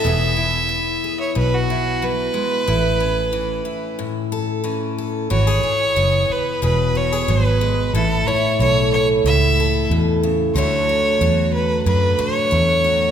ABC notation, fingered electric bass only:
X:1
M:4/4
L:1/8
Q:1/4=91
K:A
V:1 name="Fingered electric bass" clef=bass
E,,,4 B,,,4 | A,,,4 z4 | G,,, z F,,, z E,,,2 G,,,2 | A,,, z B,,,2 C,,2 E,,2 |
D,,2 E,,2 F,, z E,,2 |]